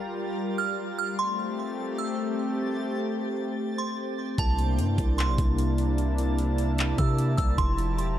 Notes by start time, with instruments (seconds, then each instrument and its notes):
Already playing: synth texture G3 F4 A#4 A6, analog synth pad G3 F4 G4 A#4
0.58 synth bell F6
0.99 synth bell F6
1.18 analog synth pad A3 C4 G4, synth texture G4 C5, synth bell C6
1.98 synth bell E6
3.78 synth bell C6
4.38 808-style bass C2, analog synth pad C3 A#3 D4 E4 A5, synth texture E4 A#4 D5, synth bell A5, kick, closed hi-hat
4.58 closed hi-hat
4.78 808-style bass G2, closed hi-hat
4.98 808-style bass C2, kick, closed hi-hat
5.18 synth bell C6, clap, closed hi-hat
5.28 808-style bass A#1
5.38 808-style bass C2, kick, closed hi-hat
5.58 closed hi-hat
5.78 closed hi-hat
5.98 closed hi-hat
6.18 closed hi-hat
6.38 closed hi-hat
6.58 closed hi-hat
6.78 clap, closed hi-hat
6.98 808-style bass C3, synth bell E6, kick, closed hi-hat
7.18 closed hi-hat
7.37 808-style bass C2, synth bell E6, kick, closed hi-hat
7.58 808-style bass F1, analog synth pad F3 G4, synth texture G4 E5 A5, synth bell C6, kick, closed hi-hat
7.78 closed hi-hat
7.98 808-style bass E1, closed hi-hat